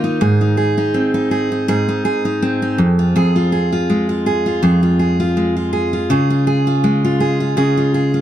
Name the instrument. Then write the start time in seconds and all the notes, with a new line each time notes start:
steel-string acoustic guitar
Already playing: D#3 A#3 F4
0.04 D#4
0.21 G#2 G#4
0.41 D#4
0.57 G#4
0.78 D#4
0.94 C4
1.14 D#4
1.31 G#4
1.52 D#4
1.68 G#2 G#4
1.89 D#4
2.05 G#4
2.25 D#4
2.42 C4
2.62 D#4
2.78 F2
2.99 F4
3.16 F2 G#4
3.36 F4
3.52 G#4
3.72 F4
3.90 G#3
4.09 F4
4.26 G#4
4.46 F4
4.63 F2 G#4
4.83 F4
4.99 G#4
5.20 F4
5.37 G#3
5.57 F4
5.73 G#4
5.93 F4
6.10 C#3 G#4
6.30 F4
6.47 G#4
6.67 F4
6.84 G#3
7.05 F4
7.20 G#4
7.40 F4
7.57 C#3 G#4
7.77 F4
7.94 G#4
8.14 F4